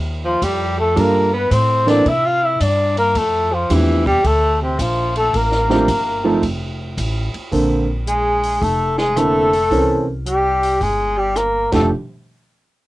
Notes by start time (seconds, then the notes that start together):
Already playing: D#2
0.25 F3 F4
0.42 F2 G3 G4, kick, hi-hat pedal, ride
0.80 A3 A4
0.96 G2 G3 A#3 D4 F4 A4 A#4, kick, ride
1.33 B3 B4
1.51 A2 C4 C5, kick, hi-hat pedal, ride
1.86 E3 A#3 C4 D4 A4 D5, snare, ride
2.06 C3 E4 E5, kick, ride
2.25 F4 F5
2.43 E4 E5
2.60 G2 D4 D5, kick, hi-hat pedal, ride
2.97 A#3 A#4, ride
3.15 F2 A3 A4, kick, ride
3.51 F3 F4
3.70 E2 E3 F3 A3 C4 D4 E4 G4, kick, hi-hat pedal, ride
4.06 G3 G4, kick, ride
4.24 D2 A3 A4, kick, ride
4.61 C3 C4
4.79 A#1 F3 F4, kick, hi-hat pedal, ride
5.16 A3 A4, ride
5.34 A1 A#3 A#4, kick, ride
5.52 snare
5.69 F3 A3 C4 D4 G4, snare
5.88 G1, kick, hi-hat pedal, ride
6.24 F3 A3 C4 D#4 A4
6.43 F1, kick, ride
6.97 A1, kick, hi-hat pedal, ride
7.34 muted upright bass stroke, ride
7.52 A#1 D3 A#3 C4 A4, kick, open hi-hat
8.07 G#3 G#4, closed hi-hat
8.43 open hi-hat
8.62 F1 A3 A4, kick, open hi-hat
8.98 G#3 G#4, snare
9.16 D3 A3 A#3 C4 E4 A4, cross-stick, closed hi-hat
9.53 open hi-hat
9.71 C2 E3 C4 C#4 A#4, kick, open hi-hat
10.26 G3 G4, closed hi-hat
10.63 open hi-hat
10.81 G1 G#3 G#4, kick, open hi-hat
11.17 G3 G4
11.36 A#3 A#4, cross-stick, closed hi-hat
11.72 F1 F3 A3 D4 G4 A4, kick, snare, crash